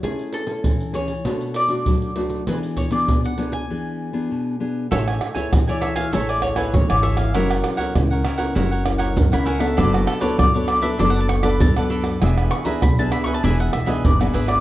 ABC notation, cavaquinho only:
X:1
M:4/4
L:1/16
Q:1/4=98
K:A
V:1 name="Cavaquinho"
z16 | z16 | [Aceg] [ceg]2 [ceg] z [ceg] [Aceg] [ceg] [Aceg] [ceg] z [ceg]2 [ceg] [Aceg] [ceg] | [E^Acf] [Acf]2 [Acf] z [Acf] [EAcf] [Acf] [EAcf] [Acf] z [Acf]2 [Acf] [EAcf] [Acf] |
[DABd] [ABd]2 [ABd] z [ABd] [DABd] [ABd] [DABd] [ABd] z [ABd]2 [ABd] [DABd] [ABd] | [DGBe] [GBe]2 [GBe] z [GBe] [DGBe] [GBe] [DGBe] [GBe] z [GBe]2 [GBe] [DGBe] [GBe] |]